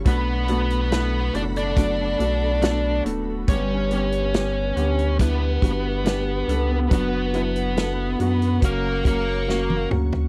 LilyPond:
<<
  \new Staff \with { instrumentName = "String section" } { \time 4/4 \key b \minor \tempo 4 = 70 << { <a' b''>1 | b'1~ | b'2 <ais' cis'' cis'''>2 | } \\ { fis''1 | r1 | fis''1 | } >> }
  \new Staff \with { instrumentName = "Lead electric guitar" } { \time 4/4 \key b \minor <b b'>4 <b b'>8 <d' d''>16 <d' d''>4.~ <d' d''>16 r8 | <cis' cis''>2 <b b'>2 | <b b'>2 <ais ais'>8 <ais ais'>4 r8 | }
  \new Staff \with { instrumentName = "Felt piano" } { \time 4/4 \key b \minor << { <a b d' fis'>8 <a b d' fis'>8 <a b d' e'>8 <a b d' fis'>8 <a b d' fis'>8 <a b d' fis'>8 <a b d' fis'>8 <a b d' a'>8 | <g b g'>8 <g b g'>8 <g b g'>8 <d g b g'>8 <g b d' e'>8 <g b d' fis'>8 <g b d' g'>8 <g b d' a'>8 | <fis b d' fis'>8 <fis b d' e'>8 <fis b d' a'>8 <fis b d' fis'>8 <fis ais cis' fis'>8 <fis ais cis' fis'>8 <fis ais cis' fis'>8 <fis ais cis' fis'>8 | } \\ { r1 | <g, d>4. r2 r8 | r2 cis4. r8 | } >> }
  \new Staff \with { instrumentName = "Nylon-string guitar" } { \time 4/4 \key b \minor <b, fis a d' fis'>2 <fis a d' fis'>8 <a d' fis'>4. | <g, d g b g'>2 <g b d' g'>8 <g b d' g'>4. | <fis b d' fis'>2 <fis ais cis' fis'>8 <fis ais cis' fis'>4. | }
  \new Staff \with { instrumentName = "Sub bass" } { \clef bass \time 4/4 \key b \minor b,,4. fis,,4 b,,4 d,,8 | g,,4. d,4 g,,4 cis,8 | fis,,4. fis,8 fis,,8 fis,,4 d,8 | }
  \new DrumStaff \with { instrumentName = "Drums" } \drummode { \time 4/4 <hh bd>8 hh16 hh16 <hh sn>8 hh16 hh16 <hh bd sn>8 hh8 <hh sn>8 hh8 | <hh bd>8 hh16 hh16 <hh sn>8 hh16 hh16 <hh bd sn>8 <hh bd>8 <hh sn>8 hh8 | <hh bd>8 hh16 hh16 <hh sn>8 hh16 hh16 <hh bd>8 <hh bd>8 sn16 tommh16 toml16 tomfh16 | }
>>